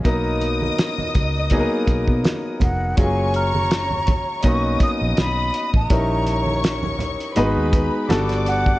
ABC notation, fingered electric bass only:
X:1
M:4/4
L:1/16
Q:"Swing 16ths" 1/4=82
K:Blyd
V:1 name="Fingered electric bass" clef=bass
B,,,4 z2 C,,3 z B,,, B,, z2 E,,,2 | F,,,6- F,,, z B,,,2 z A,,, B,,,2 z =A,,, | A,,,6- A,,, z G,,, D,,2 z =G,,,4 |]